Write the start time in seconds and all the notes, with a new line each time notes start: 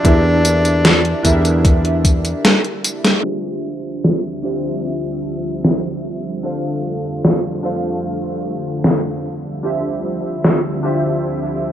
Already playing: D4
0.03 E2 D4 E4 G4 A#4 E5, kick, closed hi-hat, tambourine
0.45 closed hi-hat, tambourine
0.65 closed hi-hat, tambourine
0.85 snare, closed hi-hat, tambourine
1.05 closed hi-hat
1.23 E2 D4 E4 G4 A#4 E5, kick, closed hi-hat, tambourine
1.45 closed hi-hat, tambourine
1.65 kick, closed hi-hat, tambourine
1.85 closed hi-hat
2.05 kick, closed hi-hat, tambourine
2.25 closed hi-hat, tambourine
2.45 snare, closed hi-hat, tambourine
2.64 closed hi-hat
2.84 closed hi-hat, tambourine
3.05 snare, closed hi-hat, tambourine
3.23 D2 D3 F3 G3 C4 D4 F4 G4 C5 E5
4.04 snare
4.43 D4 F4 G4 C5 E5
5.64 snare
6.43 F2 G3 A3 D4 F4 A4 C5 F5
7.25 snare
7.63 D4 F4 A4 C5 F5
8.84 snare
9.25 D2 F3 G3 C4 E5
9.63 D4 F4 G4 C5 E5
10.44 snare
10.83 D4 F4 G4 C5 E5